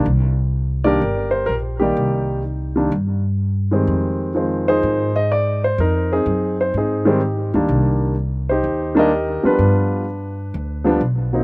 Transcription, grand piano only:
0.84 0.99 D#3 medium
0.84 0.99 G3 medium
0.84 1.00 A#3 medium
0.84 1.00 D4 medium
0.84 1.78 G4 medium
0.84 1.45 A#4 medium
0.84 1.30 D5 medium
1.31 1.48 C5 medium
1.46 1.54 A#4 medium
1.80 2.41 D#3 medium
1.80 2.41 G3 medium
1.80 2.42 A#3 medium
1.80 2.73 D#4 soft
1.80 2.40 G4 medium
1.80 2.42 D5 medium
2.76 2.90 D#3 medium
2.76 2.90 G3 medium
2.76 2.91 A#3 soft
2.76 2.91 D4 medium
3.71 4.32 D#3 medium
3.71 4.32 G3 soft
3.71 4.32 G#3 soft
3.71 4.33 C4 medium
4.35 5.09 D#3 medium
4.35 5.09 F3 soft
4.35 5.09 G#3 soft
4.35 5.09 C4 medium
4.68 5.60 D#4 medium
4.68 5.60 G#4 medium
4.68 5.17 C5 medium
5.16 5.30 D#5 medium
5.32 5.61 D5 medium
5.64 5.78 C5 medium
5.80 6.11 D#4 medium
5.80 6.13 A#4 medium
6.12 6.76 C4 medium
6.12 6.76 D#4 medium
6.12 6.56 G#4 medium
6.61 6.74 C5 medium
6.77 7.06 C4 soft
6.77 7.08 D#4 medium
6.77 7.09 G#4 medium
7.05 7.19 D#3 medium
7.05 7.20 G3 medium
7.05 7.20 G#3 medium
7.05 7.20 C4 medium
7.05 7.51 G4 medium
7.09 7.66 D#4 soft
7.54 8.13 D#3 medium
7.54 8.14 G3 medium
7.54 8.14 A#3 medium
7.54 8.14 D4 medium
8.49 9.41 D#4 medium
8.49 8.98 G4 medium
8.49 8.98 C5 medium
8.95 9.09 D#3 medium
8.95 9.10 G3 medium
8.95 9.10 A#3 medium
8.95 9.10 D4 medium
8.95 9.56 A#4 medium
8.99 9.56 G4 medium
8.99 9.42 D#5 medium
9.43 10.03 F3 medium
9.43 10.03 G3 medium
9.43 10.04 B3 medium
9.43 10.85 D4 medium
9.43 10.04 F4 medium
9.43 10.99 B4 medium
10.84 10.99 F3 medium
10.84 10.99 G3 medium
10.84 11.00 B3 medium
10.84 11.00 D4 medium
11.33 11.44 F#3 medium
11.33 11.44 A#3 medium
11.33 11.44 C4 medium
11.33 11.44 D#4 medium

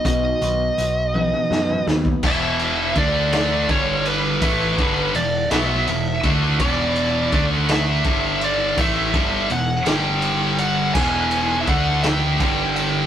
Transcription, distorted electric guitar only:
2.23 2.95 E2 medium
2.23 2.95 B2 loud
2.23 2.96 E3 loud
2.95 3.68 D3 loud
2.95 3.68 A3 medium
2.95 3.68 D4 loud
3.69 4.41 G2 medium
3.69 4.41 D3 medium
3.69 4.42 G3 medium
4.42 4.77 A2 medium
4.42 4.78 E3 loud
4.42 4.78 A3 loud
4.78 5.14 G2 medium
4.78 5.14 D3 medium
4.78 5.14 G3 medium
5.15 5.44 E2 medium
5.15 5.44 B2 medium
5.52 5.87 B2 medium
5.52 5.87 F#3 medium
5.52 5.87 B3 medium
5.88 6.17 E2 medium
5.88 6.17 B2 medium
6.24 6.59 D3 loud
6.24 6.60 A3 medium
6.24 6.59 D4 loud
6.60 7.32 E2 loud
6.60 7.32 B2 loud
6.60 7.32 E3 loud
7.32 8.04 D3 medium
7.32 8.04 A3 loud
7.32 8.05 D4 loud
8.05 8.77 G2 medium
8.05 8.77 D3 medium
8.05 8.77 G3 loud
8.77 9.13 A2 loud
8.77 9.13 E3 medium
8.77 9.13 A3 loud
9.13 9.49 G2 medium
9.13 9.49 D3 medium
9.13 9.50 G3 loud
9.50 9.79 E2 medium
9.50 9.79 B2 medium
9.86 10.94 G2 medium
9.86 10.94 D3 medium
9.86 10.95 G3 loud
10.95 11.66 E2 loud
10.95 11.67 B2 loud
10.95 11.67 E3 loud
11.68 12.39 D3 medium
11.68 12.39 A3 loud
11.68 12.40 D4 loud
12.40 13.06 G2 loud
12.40 13.06 D3 loud
12.40 13.06 G3 loud

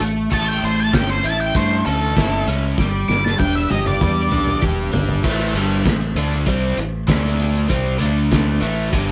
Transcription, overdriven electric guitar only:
0.00 0.30 A3 medium
0.31 1.54 A3 medium
0.93 1.85 C#4 medium
1.24 2.16 E4 medium
1.55 2.78 A3 medium
1.86 2.47 C#4 medium
2.17 2.78 E4 medium
2.48 2.78 C#4 medium
2.79 4.00 G3 medium
3.39 4.30 D4 medium
3.70 4.61 G4 medium
4.01 5.24 G3 medium
4.32 4.92 D4 medium
4.62 5.24 G4 medium
4.93 5.24 D4 medium
5.24 5.54 A2 medium
5.24 5.54 E3 medium
5.24 5.54 A3 medium
5.55 5.84 G2 medium
5.55 5.85 D3 loud
5.55 5.85 G3 loud
5.86 6.10 A2 medium
5.86 6.10 E3 medium
6.17 6.46 D3 loud
6.17 6.47 A3 loud
6.17 6.47 D4 loud
6.46 6.76 C3 loud
6.46 6.77 G3 loud
6.46 6.77 C4 loud
6.78 7.02 A2 medium
6.78 7.02 E3 medium
7.07 7.68 D3 medium
7.07 7.69 A3 loud
7.07 7.69 D4 loud
7.69 7.98 C3 medium
7.69 7.99 G3 loud
7.69 8.00 C4 loud
7.99 8.60 D3 medium
7.99 8.61 A3 loud
7.99 8.61 D4 loud
8.61 8.92 A2 medium
8.61 8.93 E3 loud
8.61 8.92 A3 loud
8.92 9.12 G2 loud
8.92 9.12 D3 loud
8.92 9.12 G3 loud

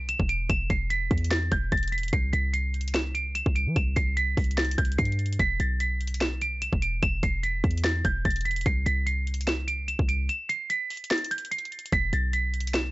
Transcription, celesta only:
0.09 0.26 E7 medium
0.29 0.46 D7 medium
0.50 0.67 E7 loud
0.70 0.87 C7 medium
0.90 1.29 B6 medium
1.31 1.48 A6 medium
1.52 1.69 G6 medium
1.72 1.89 A6 medium
1.92 2.10 B6 medium
2.13 2.30 C7 medium
2.33 2.50 B6 medium
2.53 2.92 C7 medium
2.94 3.12 E7 medium
3.15 3.32 D7 medium
3.35 3.52 E7 medium
3.56 3.73 D7 medium
3.76 3.93 E7 medium
3.96 4.14 C7 medium
4.17 4.55 B6 medium
4.57 4.75 A6 medium
4.78 4.95 G6 medium
4.98 5.37 C7 medium
5.40 5.57 B6 loud
5.60 5.77 A6 medium
5.80 6.19 B6 medium
6.21 6.38 E7 medium
6.42 6.59 D7 medium
6.62 6.79 E7 medium
6.82 6.99 D7 medium
7.03 7.20 E7 loud
7.23 7.40 C7 medium
7.43 7.82 B6 medium
7.84 8.01 A6 medium
8.05 8.22 G6 medium
8.25 8.42 A6 medium
8.45 8.63 B6 medium
8.66 8.83 C7 medium
8.86 9.03 B6 medium
9.06 9.45 C7 medium
9.47 9.65 E7 medium
9.68 9.85 D7 medium
9.88 10.05 E7 medium
10.09 10.26 D7 medium
10.29 10.46 E7 medium
10.49 10.67 C7 medium
10.70 11.08 B6 medium
11.10 11.28 A6 medium
11.31 11.48 G6 medium
11.51 11.90 C7 medium
11.93 12.10 B6 loud
12.13 12.30 A6 medium
12.33 12.72 B6 medium
12.74 12.91 E7 medium

